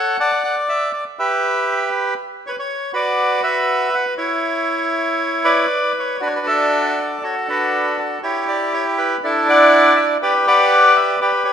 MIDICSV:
0, 0, Header, 1, 2, 480
1, 0, Start_track
1, 0, Tempo, 496278
1, 192, Time_signature, 4, 2, 24, 8
1, 3552, Tempo, 505476
1, 7392, Tempo, 495868
1, 11082, End_track
2, 0, Start_track
2, 0, Title_t, "Bandoneon"
2, 0, Program_c, 0, 23
2, 0, Note_on_c, 0, 69, 53
2, 0, Note_on_c, 0, 73, 59
2, 0, Note_on_c, 0, 78, 86
2, 161, Note_off_c, 0, 73, 0
2, 162, Note_off_c, 0, 69, 0
2, 179, Note_off_c, 0, 78, 0
2, 193, Note_on_c, 0, 78, 66
2, 195, Note_on_c, 0, 81, 89
2, 196, Note_on_c, 0, 74, 75
2, 303, Note_off_c, 0, 81, 0
2, 414, Note_off_c, 0, 78, 0
2, 428, Note_on_c, 0, 78, 81
2, 537, Note_off_c, 0, 78, 0
2, 668, Note_on_c, 0, 76, 78
2, 884, Note_off_c, 0, 74, 0
2, 893, Note_off_c, 0, 76, 0
2, 899, Note_on_c, 0, 74, 60
2, 1009, Note_off_c, 0, 74, 0
2, 1151, Note_on_c, 0, 76, 75
2, 1154, Note_on_c, 0, 67, 60
2, 1154, Note_on_c, 0, 71, 48
2, 1831, Note_off_c, 0, 76, 0
2, 2072, Note_off_c, 0, 67, 0
2, 2072, Note_off_c, 0, 71, 0
2, 2385, Note_on_c, 0, 73, 76
2, 2405, Note_on_c, 0, 71, 64
2, 2430, Note_off_c, 0, 73, 0
2, 2477, Note_off_c, 0, 71, 0
2, 2507, Note_on_c, 0, 73, 80
2, 2819, Note_off_c, 0, 73, 0
2, 2838, Note_on_c, 0, 66, 61
2, 2841, Note_on_c, 0, 71, 59
2, 2857, Note_on_c, 0, 74, 78
2, 3290, Note_off_c, 0, 74, 0
2, 3307, Note_off_c, 0, 71, 0
2, 3321, Note_on_c, 0, 71, 67
2, 3323, Note_on_c, 0, 76, 86
2, 3757, Note_off_c, 0, 66, 0
2, 3809, Note_on_c, 0, 78, 88
2, 3812, Note_off_c, 0, 76, 0
2, 3912, Note_off_c, 0, 78, 0
2, 3999, Note_off_c, 0, 71, 0
2, 4031, Note_on_c, 0, 73, 77
2, 4032, Note_on_c, 0, 64, 60
2, 5230, Note_on_c, 0, 71, 51
2, 5238, Note_on_c, 0, 74, 78
2, 5438, Note_off_c, 0, 73, 0
2, 5439, Note_off_c, 0, 64, 0
2, 5689, Note_off_c, 0, 74, 0
2, 5756, Note_on_c, 0, 73, 68
2, 5922, Note_off_c, 0, 71, 0
2, 5957, Note_on_c, 0, 66, 54
2, 5963, Note_off_c, 0, 73, 0
2, 5966, Note_on_c, 0, 62, 51
2, 5979, Note_on_c, 0, 71, 69
2, 6014, Note_on_c, 0, 73, 59
2, 6026, Note_off_c, 0, 71, 0
2, 6076, Note_off_c, 0, 73, 0
2, 6101, Note_on_c, 0, 71, 68
2, 6202, Note_off_c, 0, 71, 0
2, 6203, Note_on_c, 0, 69, 57
2, 6219, Note_on_c, 0, 76, 76
2, 6692, Note_on_c, 0, 74, 59
2, 6702, Note_off_c, 0, 76, 0
2, 6877, Note_off_c, 0, 66, 0
2, 6882, Note_off_c, 0, 62, 0
2, 6913, Note_off_c, 0, 69, 0
2, 6927, Note_on_c, 0, 69, 55
2, 6931, Note_off_c, 0, 74, 0
2, 6933, Note_on_c, 0, 66, 48
2, 6942, Note_on_c, 0, 73, 61
2, 7044, Note_off_c, 0, 73, 0
2, 7164, Note_off_c, 0, 66, 0
2, 7169, Note_on_c, 0, 62, 55
2, 7178, Note_on_c, 0, 66, 54
2, 7184, Note_on_c, 0, 71, 70
2, 7636, Note_off_c, 0, 69, 0
2, 7651, Note_on_c, 0, 69, 56
2, 7661, Note_off_c, 0, 71, 0
2, 7840, Note_off_c, 0, 62, 0
2, 7844, Note_off_c, 0, 66, 0
2, 7865, Note_off_c, 0, 69, 0
2, 7888, Note_on_c, 0, 73, 74
2, 7890, Note_on_c, 0, 67, 53
2, 7897, Note_on_c, 0, 64, 57
2, 8103, Note_off_c, 0, 73, 0
2, 8131, Note_on_c, 0, 74, 76
2, 8368, Note_off_c, 0, 74, 0
2, 8380, Note_on_c, 0, 73, 77
2, 8481, Note_off_c, 0, 73, 0
2, 8616, Note_on_c, 0, 71, 73
2, 8801, Note_off_c, 0, 67, 0
2, 8805, Note_off_c, 0, 64, 0
2, 8827, Note_off_c, 0, 71, 0
2, 8861, Note_on_c, 0, 62, 58
2, 8868, Note_on_c, 0, 69, 74
2, 8872, Note_on_c, 0, 64, 56
2, 9095, Note_off_c, 0, 69, 0
2, 9105, Note_on_c, 0, 74, 65
2, 9115, Note_on_c, 0, 78, 93
2, 9540, Note_off_c, 0, 78, 0
2, 9565, Note_on_c, 0, 76, 67
2, 9669, Note_off_c, 0, 76, 0
2, 9765, Note_off_c, 0, 62, 0
2, 9767, Note_off_c, 0, 74, 0
2, 9770, Note_off_c, 0, 64, 0
2, 9819, Note_on_c, 0, 71, 56
2, 9823, Note_on_c, 0, 67, 62
2, 9827, Note_on_c, 0, 74, 80
2, 9926, Note_off_c, 0, 74, 0
2, 10047, Note_off_c, 0, 71, 0
2, 10062, Note_on_c, 0, 71, 66
2, 10062, Note_on_c, 0, 74, 66
2, 10062, Note_on_c, 0, 78, 93
2, 10532, Note_on_c, 0, 76, 69
2, 10541, Note_off_c, 0, 78, 0
2, 10728, Note_off_c, 0, 67, 0
2, 10745, Note_off_c, 0, 76, 0
2, 10757, Note_off_c, 0, 74, 0
2, 10765, Note_off_c, 0, 71, 0
2, 10772, Note_on_c, 0, 74, 82
2, 10779, Note_on_c, 0, 71, 58
2, 10783, Note_on_c, 0, 67, 56
2, 10875, Note_off_c, 0, 74, 0
2, 10987, Note_off_c, 0, 67, 0
2, 11002, Note_on_c, 0, 67, 65
2, 11003, Note_on_c, 0, 73, 72
2, 11082, Note_off_c, 0, 67, 0
2, 11082, Note_off_c, 0, 71, 0
2, 11082, Note_off_c, 0, 73, 0
2, 11082, End_track
0, 0, End_of_file